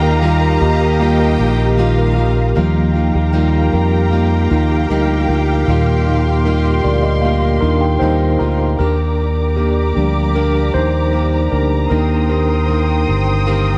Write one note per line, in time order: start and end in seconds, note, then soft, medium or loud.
0.00 0.58 D#2 loud
0.00 2.53 D#3 medium
0.00 0.21 A#3 soft
0.00 0.99 A#3 medium
0.00 0.22 D#4 soft
0.00 0.22 F4 medium
0.00 0.20 G4 medium
0.00 2.54 G4 medium
0.00 0.40 A#4 medium
0.00 2.54 D#5 medium
0.00 2.52 F5 medium
0.00 0.19 G5 medium
0.00 2.52 A#5 medium
0.22 0.61 D#3 medium
0.22 0.61 G3 medium
0.22 0.62 A#3 medium
0.22 0.61 D#4 medium
0.22 0.59 F4 medium
0.22 0.60 G4 medium
0.22 0.97 A#5 medium
0.41 0.80 A#4 medium
0.60 1.35 D#2 loud
0.60 0.99 A#3 soft
0.60 1.00 D#4 soft
0.60 1.00 F4 medium
0.60 1.38 G4 medium
0.81 1.18 A#4 medium
0.99 1.78 G3 medium
0.99 2.52 A#3 medium
0.99 1.78 A#3 medium
0.99 1.78 D#4 medium
0.99 1.79 F4 medium
0.99 1.74 G5 medium
1.20 1.57 A#4 medium
1.39 2.52 A#1 medium
1.39 1.78 G4 medium
1.59 1.97 A#4 medium
1.77 2.17 D#3 medium
1.77 2.17 G3 medium
1.77 2.17 A#3 medium
1.77 2.16 D#4 medium
1.77 2.15 F4 loud
1.77 2.17 G4 medium
1.77 2.56 F5 medium
1.98 2.36 A#4 medium
2.16 2.55 A#3 soft
2.16 2.55 D#4 soft
2.16 2.56 F4 medium
2.16 2.56 G4 medium
2.37 2.56 A#4 medium
2.55 3.11 D#2 medium
2.55 2.95 D#3 medium
2.55 5.65 F3 medium
2.55 2.95 G3 medium
2.55 2.95 A#3 medium
2.55 2.94 D#4 medium
2.55 2.93 F4 medium
2.55 8.76 G4 medium
2.55 8.76 F5 medium
2.55 8.76 G5 medium
2.55 5.66 A#5 medium
2.77 4.11 A#3 soft
2.94 3.32 A#3 soft
2.94 3.33 D#4 soft
2.94 4.47 D#4 medium
2.94 3.33 F4 medium
3.15 3.69 D#2 medium
3.15 3.53 G4 medium
3.33 4.16 D#3 medium
3.33 4.10 G3 medium
3.33 4.11 A#3 medium
3.33 4.12 D#4 medium
3.33 4.12 F4 medium
3.33 3.72 A#4 soft
3.54 3.92 G4 soft
3.73 4.47 F2 medium
3.73 4.30 A#4 medium
3.93 4.69 G4 soft
4.10 4.50 G3 medium
4.10 4.51 A#3 medium
4.10 5.85 A#3 medium
4.10 4.50 D#4 medium
4.10 4.49 F4 medium
4.32 4.88 A#4 soft
4.50 4.88 D#2 medium
4.50 4.90 A#3 soft
4.50 6.03 D#4 medium
4.50 4.90 D#4 soft
4.50 4.90 F4 medium
4.71 5.08 G4 soft
4.89 5.26 D2 medium
4.89 5.29 G3 medium
4.89 5.29 A#3 medium
4.89 5.29 D#4 medium
4.89 5.27 F4 medium
4.89 5.27 A#4 medium
5.09 5.47 G4 medium
5.28 5.65 D2 medium
5.28 5.68 A#3 soft
5.28 5.68 D#4 soft
5.28 5.68 F4 medium
5.28 6.44 A#4 soft
5.48 6.25 G4 soft
5.67 6.81 D#2 medium
5.67 8.75 A#2 medium
5.67 6.07 D#3 medium
5.67 6.07 G3 medium
5.67 6.07 A#3 medium
5.67 6.07 D#4 medium
5.67 6.05 F4 medium
5.67 8.77 C6 medium
5.86 7.20 A#3 soft
6.06 6.45 A#3 soft
6.06 7.59 D#4 soft
6.06 6.46 D#4 soft
6.06 6.46 F4 soft
6.26 6.63 G4 soft
6.45 7.22 G3 medium
6.45 7.23 A#3 medium
6.45 7.24 D#4 medium
6.45 7.24 F4 medium
6.45 6.83 A#4 medium
6.64 7.01 G4 soft
6.84 7.59 D2 medium
6.84 7.41 A#4 medium
6.84 7.03 D5 medium
7.02 7.80 G4 soft
7.02 7.22 D#5 medium
7.21 7.62 G3 medium
7.21 8.74 A#3 soft
7.21 7.63 A#3 medium
7.21 7.62 D#4 medium
7.21 7.77 F5 medium
7.25 7.61 F4 medium
7.42 7.60 A#4 soft
7.61 7.99 D#2 medium
7.61 7.99 D4 medium
7.61 7.99 D#4 soft
7.61 8.01 D#4 soft
7.61 8.01 F4 soft
7.61 7.98 A#4 medium
7.65 8.01 A#3 soft
7.81 8.19 G4 soft
7.81 7.98 G5 medium
7.99 8.38 D#2 medium
7.99 8.40 D#3 medium
7.99 8.41 G3 medium
7.99 8.41 A#3 medium
7.99 8.75 D#4 medium
7.99 8.40 D#4 medium
7.99 8.39 F4 medium
7.99 8.38 A#4 soft
7.99 8.81 C5 medium
7.99 8.37 G5 medium
8.20 8.58 G4 soft
8.39 8.77 D2 medium
8.39 8.78 A#3 soft
8.39 8.79 D#4 soft
8.39 8.79 F4 medium
8.39 8.77 A#4 soft
8.39 8.76 A#5 soft
8.59 8.79 G4 soft
8.79 9.93 D#2 medium
8.79 9.56 D#3 medium
8.79 9.57 A#3 medium
8.79 9.57 D4 medium
8.79 9.54 D4 medium
8.79 11.88 G4 medium
8.79 9.59 G4 medium
8.79 9.53 A#4 medium
8.79 11.88 D5 medium
8.79 13.78 A#5 medium
8.79 11.88 D6 medium
9.56 9.96 D#3 soft
9.56 9.96 A#3 soft
9.56 10.32 A#3 medium
9.56 9.95 D4 soft
9.56 10.31 G4 medium
9.56 9.94 G4 soft
9.95 10.70 D2 medium
9.95 11.87 F3 soft
9.95 11.87 G3 soft
9.95 10.34 A#3 soft
9.95 10.35 D4 soft
9.95 10.35 G4 soft
10.35 11.13 A#3 medium
10.35 11.12 D4 medium
10.35 10.72 D4 medium
10.35 11.14 G4 medium
10.35 10.76 A#4 medium
10.74 11.49 D#2 medium
10.74 11.48 D#4 medium
10.74 11.55 C5 medium
11.13 11.90 A#3 soft
11.13 11.91 D4 soft
11.13 11.91 G4 soft
11.52 11.89 D2 medium
11.52 11.89 D4 medium
11.52 11.89 A#4 medium
11.90 13.04 D#2 medium
11.90 13.78 D#3 soft
11.90 12.30 D#3 soft
11.90 13.78 A#3 soft
11.90 12.30 A#3 medium
11.90 12.29 C4 medium
11.90 12.30 D4 soft
11.90 12.28 D#4 medium
11.90 12.28 G4 medium
11.90 12.28 A#4 medium
11.90 13.78 C5 medium
11.90 13.78 G5 medium
11.90 13.78 D#6 medium
12.29 12.68 A#3 soft
12.29 12.69 C4 soft
12.29 13.05 D4 medium
12.29 12.69 G4 soft
12.29 13.04 A#4 medium
12.68 13.08 D#3 soft
12.68 13.08 A#3 medium
12.68 13.07 C4 medium
12.68 13.06 G4 medium
13.07 13.78 G1 medium
13.07 13.45 A#3 soft
13.07 13.46 C4 soft
13.07 13.47 G4 soft
13.46 13.78 D#3 medium
13.46 13.78 A#3 medium
13.46 13.78 C4 medium
13.46 13.78 G4 medium